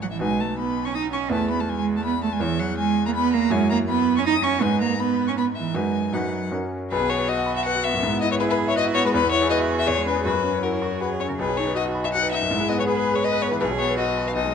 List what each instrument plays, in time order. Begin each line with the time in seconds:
Already playing: grand piano A1 C#4 A4 C#5
0.02 cello F#3, violin F#5
0.12 cello E3, violin E5
0.19 grand piano B1 D#4 F#4 B4, cello G#3, violin G#5
0.40 cello A3, violin A5
0.58 cello B3, violin B5
0.85 cello C#4, violin C#6
0.95 cello D#4, violin D#6
1.13 cello C#4, violin C#6
1.30 grand piano E2 E4 G#4 B4, cello A3, violin A5
1.50 cello B3, violin B5
1.60 cello A3, violin A5
1.68 cello G#3, violin G#5
1.78 cello G#3, violin G#5
1.96 cello A3, violin A5
2.05 cello B3, violin B5
2.23 cello A3, violin A5
2.33 cello G#3, violin G#5
2.40 grand piano E2 E4 G#4 C#5, cello E3, violin E5
2.60 cello F#3, violin F#5
2.77 cello G#3, violin G#5
3.06 cello A#3, violin A#5
3.15 cello B3, violin B5
3.33 cello A#3, violin A#5
3.50 grand piano F#2 E4 F#4 C#5, cello G#3, violin G#5
3.70 cello A#3, violin A#5
3.89 cello B3, violin B5
4.17 cello C#4, violin C#6
4.25 cello D#4, violin D#6
4.43 cello C#4, violin C#6
4.61 grand piano G#2 D#4 B4, cello G#3, violin G#5
4.81 cello A#3, violin A#5
5.00 cello B3, violin B5
5.28 cello C#4, violin C#6
5.38 cello B3, violin B5
5.56 cello E3, violin E5
5.74 grand piano F#2 D#4 F#4 B4, cello G#3, violin G#5
6.12 grand piano F#2 D#4 F#4 B4, cello F#3, violin F#5
6.51 grand piano F#2 C#4 F#4 A#4
6.91 grand piano B1, cello G#4, violin B4
7.00 grand piano B3
7.09 grand piano F#4, violin C#5
7.18 grand piano B4
7.27 grand piano F#4, cello F#4, violin D#5
7.38 grand piano F#5
7.46 grand piano B5
7.56 violin E5, grand piano F#5
7.65 grand piano B4, violin F#5
7.76 grand piano F#4
7.83 grand piano B3, violin E5
7.94 grand piano F#2
8.02 grand piano G#2, cello E4
8.13 grand piano B3
8.21 grand piano E4, violin D#5
8.32 grand piano B4, violin C#5
8.39 grand piano E4, cello G#4, violin B4
8.49 violin B4, grand piano E5
8.58 grand piano B5
8.68 violin C#5, grand piano E5
8.76 cello F#4, grand piano B4, violin D#5
8.86 grand piano E4
8.95 grand piano B3, violin C#5
9.05 grand piano G#3, violin B4
9.13 grand piano E2, cello E4, violin B4
9.23 grand piano B3
9.32 grand piano E4, violin C#5
9.41 grand piano G#4
9.50 cello F#4, grand piano B4, violin D#5
9.60 grand piano E5
9.69 grand piano G#5
9.79 grand piano E5, violin E5
9.86 grand piano E2, cello G#4, violin C#5
9.98 grand piano G#3
10.06 grand piano C#4, violin B4
10.16 grand piano G#4
10.24 grand piano F#2, cello F#4, violin B4
10.34 grand piano F#3
10.44 grand piano C#4
10.54 grand piano C#5
10.62 cello E4, grand piano F#4, violin A#4
10.72 grand piano C#5
10.82 cello F#4, grand piano C#6
10.92 grand piano C#5
11.00 grand piano F#4, cello G#4, violin B4
11.10 grand piano C#5
11.20 grand piano C#4, violin C#5
11.29 grand piano C#3, cello A#4
11.38 grand piano B1, cello G#4, violin B4
11.49 grand piano F#3
11.57 grand piano D#4, violin C#5
11.67 grand piano B4
11.76 grand piano F#4, cello F#4, violin D#5
11.86 grand piano D#5
11.95 grand piano B5
12.04 grand piano D#5, violin E5
12.12 cello D#4, grand piano F#4, violin F#5
12.23 grand piano B4
12.32 grand piano D#4, violin E5
12.41 grand piano F#2
12.50 grand piano G#2, cello E4
12.60 grand piano G#3
12.69 grand piano B3, violin D#5
12.78 grand piano B4, violin C#5
12.86 cello G#4, grand piano G#4, violin B4
12.96 grand piano B4, violin B4
13.05 grand piano B5
13.14 grand piano B4, violin C#5
13.23 grand piano G#4, cello B4, violin D#5
13.33 grand piano B4
13.42 grand piano B3, violin C#5
13.52 grand piano E3, violin B4
13.60 grand piano B1, cello G#4, violin B4
13.71 grand piano F#3
13.79 grand piano B3, violin C#5
13.89 grand piano B4
13.97 cello F#4, grand piano F#4, violin D#5
14.08 grand piano B4
14.17 grand piano B5
14.27 grand piano B4, violin F5
14.35 grand piano B1, cello D#4, violin D#5
14.45 grand piano G#3